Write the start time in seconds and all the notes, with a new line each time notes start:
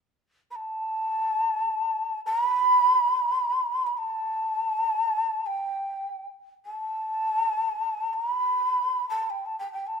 0.51 B5
0.55 A5
2.26 A#5
2.44 B5
3.86 B5
3.98 A5
5.46 G5
6.66 A5
8.13 A#5
8.32 B5
9.10 A5
9.30 G5
9.46 A5
9.59 G5
9.72 G5
9.87 A5